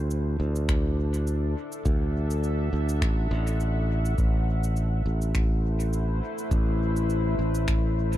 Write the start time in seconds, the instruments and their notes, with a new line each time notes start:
Already playing: fingered electric bass D2, ambient pad D4 E4 B4 C5
0.11 shaker
0.19 ambient pad A4
0.40 fingered electric bass D2
0.56 shaker
0.69 finger snap, kick, shaker
1.12 ambient pad E5, shaker
1.27 shaker
1.62 ambient pad F#5
1.72 shaker
1.85 fingered electric bass D2, kick, shaker
2.31 shaker
2.44 shaker
2.73 fingered electric bass D2
2.89 shaker
3.02 fingered electric bass A1, finger snap, kick, shaker
3.31 fingered electric bass A1
3.47 shaker
3.60 shaker
4.05 shaker
4.18 fingered electric bass A1, ambient pad A3, kick, shaker
4.63 shaker
4.76 ambient pad C5, shaker
4.92 ambient pad E4
4.96 ambient pad B4
5.06 fingered electric bass A1
5.22 shaker
5.35 finger snap, kick, shaker
5.80 shaker
5.93 shaker
6.38 shaker
6.51 fingered electric bass A1, kick, shaker
6.96 shaker
7.10 shaker
7.39 fingered electric bass A1
7.55 shaker
7.68 finger snap, kick, shaker
8.13 shaker